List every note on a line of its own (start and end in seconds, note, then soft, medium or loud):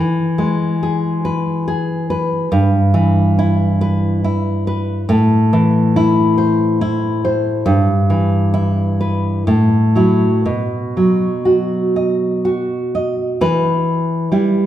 0.00 2.47 E3 medium
0.38 1.66 G#3 medium
0.83 1.66 G#4 medium
1.25 2.09 B4 medium
1.68 2.51 G#4 medium
2.10 2.51 B4 medium
2.52 5.04 G2 medium
2.94 4.22 E3 medium
3.39 4.23 E4 medium
3.81 4.66 B4 medium
4.24 5.09 E4 medium
4.67 5.09 B4 medium
5.09 7.63 A2 medium
5.53 6.81 E3 medium
5.96 6.80 E4 medium
6.38 7.23 C5 medium
6.81 7.67 E4 medium
7.25 7.67 C5 medium
7.66 9.43 G2 medium
8.10 9.47 E3 medium
8.54 9.47 E4 medium
9.01 9.48 B4 medium
9.47 10.43 A2 medium
9.95 10.42 F#3 soft
9.95 10.43 E4 medium
10.45 13.37 B2 medium
10.97 12.44 F#3 soft
11.45 12.44 F#4 medium
11.96 12.94 D#5 soft
12.45 13.41 F#4 medium
12.95 13.41 D#5 soft
13.41 14.28 E3 medium
13.41 14.66 B4 medium
14.32 14.66 G3 soft
14.32 14.66 E4 medium